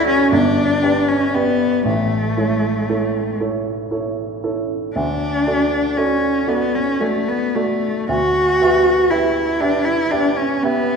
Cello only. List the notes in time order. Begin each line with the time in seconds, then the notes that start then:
0.07 C#4
0.32 D4
1.09 C#4
1.35 B3
1.86 A3
4.95 D4
5.97 C#4
6.49 B3
6.75 C#4
7.01 A3
7.28 B3
7.56 A3
8.10 F#4
9.10 E4
9.61 D4
9.85 E4
10.11 D4
10.36 C#4
10.63 B3